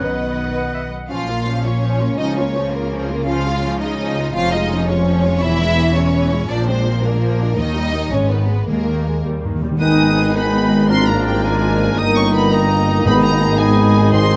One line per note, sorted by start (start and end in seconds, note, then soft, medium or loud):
0.00 0.92 B1 soft
0.00 0.82 D#3 soft
0.00 0.92 B3 soft
0.00 0.92 B3 medium
0.00 0.91 B4 soft
0.00 0.92 B4 soft
0.00 0.90 B4 soft
0.00 0.90 D#5 soft
0.00 0.42 D#5 soft
0.00 0.88 F#5 medium
0.00 0.89 F#5 soft
0.57 0.73 F#5 soft
0.74 0.82 E5 soft
0.93 1.10 F#5 soft
1.10 2.15 A#1 soft
1.10 2.15 A#2 medium
1.10 1.27 F3 soft
1.10 1.26 C#4 soft
1.10 1.61 F4 medium
1.10 1.60 F5 medium
1.27 1.46 A#3 soft
1.27 1.46 F4 soft
1.46 1.64 F3 soft
1.46 1.64 C#4 soft
1.64 1.82 A#3 soft
1.64 2.19 C#4 medium
1.64 1.82 F4 soft
1.64 2.18 C#5 medium
1.82 1.99 F3 soft
1.82 1.99 C#4 soft
2.00 2.18 A#3 soft
2.00 2.18 F4 soft
2.18 4.32 C#2 medium
2.18 4.32 C#3 medium
2.18 2.35 F3 soft
2.18 2.35 C#4 soft
2.18 2.36 D#4 medium
2.18 2.36 D#5 medium
2.36 2.55 A#3 soft
2.36 2.73 C#4 medium
2.36 2.55 F4 soft
2.36 2.72 C#5 medium
2.54 2.73 F3 soft
2.54 2.73 C#4 soft
2.72 2.91 A#3 soft
2.72 3.27 A#3 medium
2.72 2.91 F4 soft
2.72 3.27 A#4 medium
2.91 3.08 F3 soft
2.91 3.08 C#4 soft
3.09 3.27 A#3 soft
3.09 3.27 F4 soft
3.26 3.44 F3 medium
3.26 3.44 C#4 medium
3.26 3.81 F4 medium
3.26 3.80 F5 medium
3.45 3.64 G#3 soft
3.45 3.64 F4 medium
3.62 3.81 F3 soft
3.62 3.81 C#4 soft
3.80 4.00 G#3 soft
3.80 4.34 D#4 medium
3.80 4.00 F4 soft
3.80 4.34 D#5 medium
3.99 4.16 F3 soft
3.99 4.16 C#4 soft
4.17 4.35 G#3 soft
4.17 4.35 F4 soft
4.34 5.41 F1 medium
4.34 5.41 F2 medium
4.34 4.52 F3 medium
4.34 4.52 C#4 medium
4.34 4.53 F4 medium
4.34 4.52 F5 loud
4.52 4.71 G#3 medium
4.52 4.88 D#4 medium
4.52 4.71 F4 medium
4.52 4.88 D#5 medium
4.71 4.89 F3 medium
4.71 4.89 C#4 medium
4.87 5.07 G#3 medium
4.87 5.43 C#4 medium
4.87 5.07 F4 medium
4.87 5.41 C#5 medium
5.06 5.23 F3 medium
5.06 5.24 C#4 medium
5.25 5.43 G#3 soft
5.25 5.43 F4 soft
5.41 6.50 E1 medium
5.41 6.50 E2 medium
5.41 5.59 E3 medium
5.41 5.59 B3 medium
5.41 5.96 E4 medium
5.41 5.95 E5 loud
5.61 5.79 G#3 medium
5.61 5.78 E4 medium
5.78 5.96 E3 medium
5.78 5.96 B3 medium
5.95 6.14 G#3 medium
5.95 6.49 C#4 medium
5.95 6.14 E4 medium
5.95 6.49 C#5 medium
6.14 6.31 E3 medium
6.14 6.31 B3 medium
6.32 6.50 G#3 soft
6.32 6.50 E4 soft
6.49 7.56 A#1 medium
6.49 7.55 A#2 medium
6.49 6.66 F3 medium
6.49 6.66 A#3 medium
6.49 6.68 D4 medium
6.49 6.67 D5 medium
6.67 6.86 G#3 medium
6.67 7.03 C4 medium
6.67 6.86 D4 medium
6.67 7.03 C5 medium
6.85 7.03 F3 medium
6.85 7.03 A#3 soft
7.03 7.21 G#3 soft
7.03 7.57 A#3 medium
7.03 7.21 D4 soft
7.03 7.58 A#4 medium
7.21 7.38 F3 soft
7.21 7.38 A#3 soft
7.39 7.57 G#3 soft
7.39 7.57 D4 soft
7.57 8.12 D#2 medium
7.57 7.74 D#3 medium
7.57 8.08 D#3 medium
7.57 7.74 A#3 medium
7.57 8.11 D#4 medium
7.57 8.12 D#5 loud
7.76 7.94 G3 medium
7.76 7.94 D#4 medium
7.94 8.12 D#3 soft
7.94 8.12 A#3 medium
8.12 8.68 G#1 medium
8.12 8.69 G#2 medium
8.12 8.29 G#3 soft
8.12 8.31 C#4 medium
8.12 8.31 C#5 medium
8.30 8.49 D#3 soft
8.30 8.49 B3 soft
8.30 8.68 B3 medium
8.30 8.68 B4 medium
8.49 8.67 G#3 soft
8.67 9.61 D#2 soft
8.67 9.20 D#2 soft
8.67 9.21 D#3 medium
8.67 8.86 G#3 soft
8.67 9.23 A#3 medium
8.67 9.23 A#4 medium
8.86 9.06 D#3 soft
8.86 9.06 A#3 soft
9.05 9.24 G#3 soft
9.24 9.33 D#2 medium
9.24 9.42 G3 soft
9.40 9.51 G2 medium
9.40 9.47 D#3 soft
9.40 9.62 D#3 soft
9.40 9.62 A#3 soft
9.48 9.54 D#3 soft
9.55 9.62 D#3 soft
9.62 9.81 D#2 soft
9.62 9.70 D#3 medium
9.62 9.81 G3 soft
9.71 9.78 D#3 medium
9.79 12.00 G#1 medium
9.79 11.94 G#1 medium
9.79 11.94 G#2 medium
9.79 10.32 D#3 medium
9.79 10.85 B3 medium
9.79 10.86 D#4 medium
9.79 10.32 D#4 medium
9.79 10.85 G#4 medium
9.79 10.31 B4 medium
9.79 10.85 D#5 medium
9.79 10.31 G#5 medium
9.79 10.31 D#6 medium
10.35 10.91 D#3 medium
10.35 10.89 B3 medium
10.35 10.89 D#4 medium
10.35 10.89 B4 medium
10.35 10.92 G#5 medium
10.35 10.88 B5 medium
10.89 11.43 F3 medium
10.89 13.02 A#3 medium
10.89 11.08 C4 medium
10.89 11.43 D4 medium
10.89 11.94 F4 medium
10.89 11.43 A#4 medium
10.89 13.02 A#4 medium
10.89 11.94 D5 medium
10.89 11.43 A#5 medium
10.89 11.07 C6 loud
11.07 11.26 A#3 medium
11.07 11.26 A#5 medium
11.25 11.44 G3 medium
11.25 11.43 G5 medium
11.43 12.00 F3 medium
11.43 11.98 G#3 medium
11.43 11.97 D4 medium
11.43 12.00 A#4 medium
11.43 11.98 G#5 medium
11.43 11.97 A#5 medium
11.97 13.05 G1 medium
11.97 13.06 G1 medium
11.97 13.06 G2 medium
11.97 12.52 D#3 medium
11.97 14.09 D#4 medium
11.97 12.16 D#4 medium
11.97 12.52 D#4 medium
11.97 14.09 D#5 medium
11.97 12.53 D#5 medium
11.97 12.51 A#5 medium
11.97 12.16 D#6 loud
12.16 12.24 C#4 medium
12.16 12.34 C#6 loud
12.34 12.53 B3 medium
12.34 12.52 B5 medium
12.52 13.05 D#3 medium
12.52 13.07 A#3 medium
12.52 13.06 D#4 medium
12.52 13.05 D#5 medium
12.52 13.05 A#5 medium
12.52 13.06 A#5 medium
13.06 14.36 G#1 medium
13.06 13.56 G#2 medium
13.06 14.36 G#2 medium
13.06 13.59 D#3 medium
13.06 14.09 B3 medium
13.06 13.24 B3 medium
13.06 13.59 D#4 medium
13.06 14.36 G#4 medium
13.06 13.58 D#5 medium
13.06 13.58 B5 medium
13.06 13.14 B5 loud
13.24 13.60 A#3 medium
13.24 13.59 A#5 loud
13.58 14.12 D#3 medium
13.58 14.13 G#3 medium
13.58 14.13 D#4 medium
13.58 14.12 D#5 medium
13.58 14.13 G#5 medium
13.58 14.12 B5 medium
14.12 14.36 G#2 medium
14.12 14.36 D#3 medium
14.12 14.36 C4 medium
14.12 14.36 D#4 medium
14.12 14.36 D#5 medium
14.12 14.36 C6 loud
14.12 14.36 C6 medium